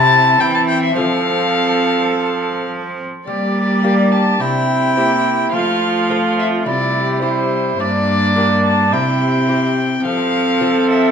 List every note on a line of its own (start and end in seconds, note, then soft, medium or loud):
0.00 0.37 C3 medium
0.00 0.41 C3 medium
0.00 0.39 C4 medium
0.00 0.93 C4 medium
0.00 0.39 E4 medium
0.00 0.93 E4 medium
0.00 0.94 G4 medium
0.00 0.42 A5 loud
0.39 0.97 E3 medium
0.39 0.94 E3 medium
0.39 0.97 C4 medium
0.39 0.77 E4 medium
0.39 0.54 G5 medium
0.54 0.60 A5 medium
0.69 0.82 G5 medium
0.83 0.96 E5 medium
0.95 3.03 F3 medium
0.95 3.04 F3 medium
0.95 3.22 C4 medium
0.95 3.04 C4 medium
0.95 3.23 F4 soft
0.95 3.23 A4 soft
0.95 2.95 A4 medium
0.95 2.66 F5 medium
3.26 4.41 G3 medium
3.26 4.37 G3 soft
3.26 4.36 A#3 medium
3.26 4.42 G4 medium
3.26 4.13 D5 medium
3.83 4.36 A#3 soft
3.83 4.37 D4 soft
3.83 4.37 G4 soft
4.11 4.42 A5 medium
4.40 5.53 C3 medium
4.40 5.50 C3 medium
4.40 4.99 C4 medium
4.40 5.55 E4 medium
4.40 5.51 G5 medium
4.97 5.55 A#3 medium
4.97 5.50 C4 soft
4.97 5.50 E4 soft
4.97 5.50 G4 soft
5.52 6.62 F3 soft
5.52 6.67 F3 medium
5.52 6.69 A3 medium
5.52 6.66 F4 medium
5.52 6.36 F5 medium
6.10 6.63 C4 soft
6.10 6.63 F4 soft
6.10 6.63 A4 soft
6.39 6.47 E5 medium
6.65 7.79 C3 medium
6.65 7.75 C3 medium
6.65 7.23 G3 medium
6.65 7.22 E4 medium
6.65 7.21 D5 medium
7.22 7.79 G3 medium
7.22 7.75 C4 soft
7.22 7.75 E4 soft
7.22 7.78 E4 medium
7.22 7.75 G4 soft
7.22 7.82 C5 medium
7.79 8.94 G2 medium
7.79 8.88 G2 medium
7.79 8.91 A#3 medium
7.79 8.94 D4 medium
7.79 8.64 D5 medium
8.36 8.88 A#3 soft
8.36 8.89 D4 soft
8.36 8.89 G4 soft
8.65 8.95 A5 medium
8.92 10.04 C3 medium
8.92 10.01 C3 soft
8.92 10.03 C4 medium
8.92 9.77 E4 medium
8.92 10.05 G5 medium
9.49 10.01 C4 soft
9.49 10.01 E4 soft
9.49 10.01 G4 soft
10.03 11.11 F3 medium
10.03 11.11 C4 medium
10.03 11.11 A4 medium
10.03 10.88 F5 medium
10.61 11.11 C4 soft
10.61 11.11 F4 soft
10.61 11.11 A4 medium
10.90 11.11 E5 medium